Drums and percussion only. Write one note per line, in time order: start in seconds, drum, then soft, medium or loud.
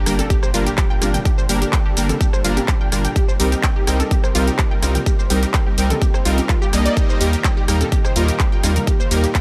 0.06 cross-stick medium
0.06 open hi-hat loud
0.06 shaker medium
0.19 closed hi-hat medium
0.19 high conga medium
0.19 shaker soft
0.30 kick loud
0.30 closed hi-hat medium
0.30 shaker soft
0.43 cross-stick medium
0.43 shaker soft
0.54 open hi-hat medium
0.54 shaker medium
0.67 closed hi-hat medium
0.67 shaker soft
0.78 kick loud
0.78 clap loud
0.78 closed hi-hat medium
0.78 shaker soft
1.02 cross-stick medium
1.02 open hi-hat medium
1.02 high conga medium
1.02 shaker medium
1.14 closed hi-hat medium
1.14 mid tom medium
1.14 shaker soft
1.25 kick loud
1.25 closed hi-hat medium
1.25 shaker soft
1.38 shaker soft
1.49 open hi-hat loud
1.49 shaker medium
1.62 closed hi-hat medium
1.62 shaker soft
1.73 kick loud
1.73 clap loud
1.73 closed hi-hat medium
1.73 shaker soft
1.97 open hi-hat loud
1.97 shaker medium
2.09 closed hi-hat medium
2.09 mid tom medium
2.09 high conga medium
2.09 shaker soft
2.21 kick loud
2.21 closed hi-hat medium
2.21 shaker soft
2.33 cross-stick medium
2.33 shaker soft
2.45 open hi-hat loud
2.45 shaker medium
2.57 closed hi-hat medium
2.57 high conga loud
2.57 shaker soft
2.68 kick loud
2.68 clap loud
2.68 closed hi-hat medium
2.68 shaker soft
2.92 cross-stick medium
2.92 open hi-hat loud
2.92 shaker medium
3.05 closed hi-hat medium
3.05 shaker soft
3.16 kick loud
3.16 closed hi-hat medium
3.16 shaker soft
3.29 shaker soft
3.40 open hi-hat loud
3.40 shaker medium
3.52 closed hi-hat medium
3.52 shaker soft
3.63 kick loud
3.63 clap loud
3.63 closed hi-hat medium
3.63 shaker soft
3.87 cross-stick medium
3.87 open hi-hat loud
3.87 shaker medium
4.00 closed hi-hat medium
4.00 high conga medium
4.00 shaker soft
4.11 kick loud
4.11 closed hi-hat medium
4.11 shaker soft
4.24 cross-stick medium
4.24 shaker soft
4.35 open hi-hat loud
4.35 shaker medium
4.47 closed hi-hat medium
4.47 shaker soft
4.59 kick loud
4.59 clap loud
4.59 closed hi-hat medium
4.59 shaker soft
4.83 cross-stick medium
4.83 open hi-hat loud
4.83 high conga medium
4.83 shaker medium
4.95 closed hi-hat medium
4.95 mid tom medium
4.95 shaker soft
5.06 kick loud
5.06 closed hi-hat medium
5.06 shaker soft
5.19 shaker soft
5.30 open hi-hat loud
5.30 shaker medium
5.43 closed hi-hat medium
5.43 shaker soft
5.54 kick loud
5.54 clap loud
5.54 closed hi-hat medium
5.54 shaker soft
5.78 open hi-hat medium
5.78 shaker medium
5.90 closed hi-hat medium
5.90 mid tom medium
5.90 high conga medium
5.90 shaker soft
6.02 kick loud
6.02 closed hi-hat medium
6.02 shaker soft
6.14 cross-stick medium
6.14 shaker soft
6.25 open hi-hat loud
6.25 shaker medium
6.38 closed hi-hat medium
6.38 high conga loud
6.38 shaker soft
6.49 kick loud
6.49 clap loud
6.49 closed hi-hat medium
6.49 shaker soft
6.62 shaker soft
6.73 cross-stick medium
6.73 open hi-hat loud
6.73 shaker medium
6.86 closed hi-hat medium
6.86 shaker soft
6.97 kick loud
6.97 closed hi-hat medium
6.97 shaker soft
7.10 shaker soft
7.21 open hi-hat loud
7.21 shaker medium
7.33 closed hi-hat medium
7.33 shaker soft
7.44 kick loud
7.44 clap loud
7.44 closed hi-hat medium
7.44 shaker soft
7.68 cross-stick medium
7.68 open hi-hat medium
7.68 shaker medium
7.81 closed hi-hat medium
7.81 high conga medium
7.81 shaker soft
7.92 kick loud
7.92 closed hi-hat medium
7.92 shaker soft
8.05 cross-stick medium
8.05 shaker soft
8.16 open hi-hat loud
8.16 shaker medium
8.28 closed hi-hat medium
8.28 shaker soft
8.40 kick loud
8.40 clap loud
8.40 closed hi-hat medium
8.40 shaker soft
8.63 cross-stick medium
8.63 open hi-hat loud
8.63 high conga medium
8.63 shaker medium
8.76 closed hi-hat medium
8.76 mid tom medium
8.76 shaker soft
8.87 kick loud
8.87 closed hi-hat medium
8.87 shaker soft
9.00 shaker soft
9.11 open hi-hat loud
9.11 shaker medium
9.24 closed hi-hat medium
9.24 shaker soft
9.35 kick loud
9.35 clap loud
9.35 closed hi-hat medium
9.35 shaker soft